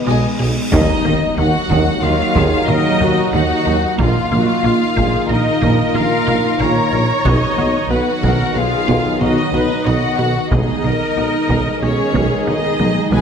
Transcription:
Already playing: D#3 G#3 B3 D#4 B4 D#5, cymbal swell
0.07 B1 B2 G#3 D#5 G#5
0.39 B1 B2 G#4 D#5 G#5
0.72 D#2 D#3 F#3 A#3 D#4 D#5, taiko, impact
1.05 D#2 D#3 A#3, taiko mid
1.38 D#2 D#3 A#3 F#4 F#5
1.70 D#2 D#3, taiko
2.02 D#2 D#3 F#3 D#4 F4 F5
2.35 D#2 D#3 G#4, taiko
2.67 D#2 D#3 A#3 D#4 A#4 D#5, taiko mid
3.00 D#2 D#3 A#3 F#4, taiko mid
3.33 D#2 D#3 D#4 F#4 F#5
3.65 D#2 D#3 D#4
3.98 A#1 A#2 D#3 A#3 D#4 F4 D#5 F5, taiko
4.31 A#1 A#2 F#3 A#3 F4, taiko mid
4.64 A#1 A#2 A#3 F4
4.96 A#1 A#2 A#3 G#4, taiko
5.29 A#1 A#2 D#4 A#4 D#5
5.62 A#1 A#2 A#3, taiko
5.94 A#1 A#2 A#3 F4 A#4 F5, taiko mid
6.27 A#1 A#2 A#3 F4, taiko mid
6.59 A#1 A#2 A#3 A#4 C#5 A#5
6.92 A#1 A#2 A#4
7.24 B1 B2 D#3 F#3 B3 D#4 D#5, taiko
7.57 B1 B2 B3 F#4, taiko mid
7.90 B1 B2 B3 F#4 B4 F#5
8.22 B1 B2 B3 A#4, taiko
8.55 B1 B2 F4 G#4 B4 F5
8.88 B1 B2 B3, taiko
9.21 B1 B2 B3 D#4 F#4 D#5, taiko mid
9.53 B1 B2 B3 F#4 B4, taiko mid
9.86 B1 B2 B3 F#4 D#5 F#5
10.18 B1 B2 F#4 B4
10.50 B1 B2 D#3 G#3 B3 D#4 G#4 D#5, taiko
10.83 B1 B2 B3 D#4 A#4, taiko mid
11.16 B1 B2 B3 D#4
11.48 B1 B2 G#3, taiko
11.81 B1 B2 C#4 G#4 C#5
12.14 B1 B2 G#3, taiko
12.46 B1 B2 B3 D#4 D#5, taiko mid
12.79 B1 B2 B3 D#4, taiko high
13.11 B1 B2 G#3 G#4 B4 G#5, taiko high

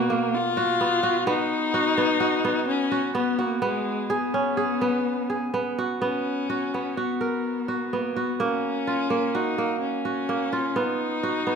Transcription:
Already playing: B2 A#3 B3 F#4
0.10 A#3
0.34 F4
0.57 F#4
0.81 B3
1.03 F#4
1.27 B3 D#4
1.74 F#4
1.98 B3
2.20 F#4
2.45 B3
2.68 C#4
2.91 F#4
3.15 B3
3.39 A#3 F#4
3.62 G#3 B3
4.10 B3 G#4
4.34 C#4
4.57 G#4
4.81 B3
5.30 G#4
5.54 B3
5.78 F#4
6.01 B3 C#4
6.50 F#4
6.74 B3
6.96 B3 F#4
7.21 A#4
7.68 F#4
7.93 A#3 B3
8.16 B3 F#4
8.40 A#3 C#4
8.87 F4
9.10 A#3
9.35 D#4 F#4
9.58 A#3
9.82 C#4
10.05 F#4
10.29 A#3
10.53 F4
10.76 B3 D#4
11.23 F#4
11.47 B3

